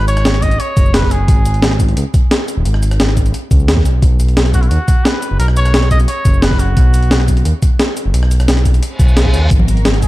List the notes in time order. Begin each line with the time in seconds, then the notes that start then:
Already playing: G#1
0.08 C#5, closed hi-hat, shaker
0.17 cross-stick, closed hi-hat, shaker
0.25 snare, closed hi-hat
0.34 cross-stick, closed hi-hat
0.42 D#5, kick, closed hi-hat, shaker
0.51 closed hi-hat, shaker
0.59 C#5, closed hi-hat
0.77 F#1, kick, closed hi-hat, shaker
0.86 shaker
0.94 B4, snare, closed hi-hat
1.03 kick, snare
1.11 G#4, closed hi-hat, shaker
1.28 G#1, kick, closed hi-hat
1.45 closed hi-hat, shaker
1.54 closed hi-hat
1.62 snare, closed hi-hat
1.71 cross-stick, closed hi-hat
1.80 kick, closed hi-hat, shaker
1.89 closed hi-hat
1.97 C#2, closed hi-hat
2.14 kick, closed hi-hat, shaker
2.31 snare, closed hi-hat
2.48 closed hi-hat, shaker
2.57 D#1
2.65 G#1, closed hi-hat
2.74 cross-stick
2.83 closed hi-hat, shaker
2.91 cross-stick, closed hi-hat, shaker
3.00 snare, closed hi-hat
3.09 cross-stick, closed hi-hat
3.17 kick, closed hi-hat, shaker
3.26 closed hi-hat, shaker
3.34 closed hi-hat
3.51 C#2, kick, closed hi-hat, shaker
3.60 shaker
3.68 D#2, snare, closed hi-hat
3.77 kick, snare
3.85 B1, closed hi-hat, shaker
4.02 B1, kick, closed hi-hat
4.20 closed hi-hat, shaker
4.28 closed hi-hat
4.37 snare, closed hi-hat
4.46 cross-stick, closed hi-hat
4.54 F#4, kick, closed hi-hat, shaker
4.62 E4, closed hi-hat
4.68 D#2 F#4, closed hi-hat
4.88 kick, closed hi-hat, shaker
5.05 B4, snare, closed hi-hat
5.22 closed hi-hat, shaker
5.31 F#1
5.39 B1 A#4, closed hi-hat
5.48 cross-stick
5.57 C#5, closed hi-hat, shaker
5.66 cross-stick, closed hi-hat, shaker
5.74 snare, closed hi-hat
5.83 cross-stick, closed hi-hat
5.91 D#5, kick, closed hi-hat, shaker
6.00 closed hi-hat, shaker
6.08 C#5, closed hi-hat
6.25 F#1, kick, closed hi-hat, shaker
6.34 shaker
6.42 B4, snare, closed hi-hat
6.51 kick, snare
6.59 F#4, closed hi-hat, shaker
6.77 B1, kick, closed hi-hat
6.94 closed hi-hat, shaker
7.03 closed hi-hat
7.11 snare, closed hi-hat
7.20 cross-stick, closed hi-hat
7.28 kick, closed hi-hat, shaker
7.37 closed hi-hat
7.45 D#2, closed hi-hat
7.62 kick, closed hi-hat, shaker
7.80 snare, closed hi-hat
7.97 closed hi-hat, shaker
8.05 F#1
8.14 B1, closed hi-hat
8.23 cross-stick
8.31 closed hi-hat, shaker
8.40 cross-stick, closed hi-hat, shaker
8.48 snare, closed hi-hat
8.57 cross-stick, closed hi-hat
8.65 kick, closed hi-hat, shaker
8.74 closed hi-hat, shaker
8.82 closed hi-hat, reverse cymbal
8.99 B1, kick, closed hi-hat, shaker
9.09 shaker
9.17 snare, closed hi-hat
9.25 kick, snare
9.34 D#2, closed hi-hat, shaker
9.51 G#1 G#3 B3 F#4 A#4, kick, closed hi-hat
9.59 high conga
9.68 closed hi-hat, shaker
9.77 closed hi-hat
9.85 snare, closed hi-hat, high conga
9.94 cross-stick, closed hi-hat
10.02 G#4, kick, closed hi-hat, shaker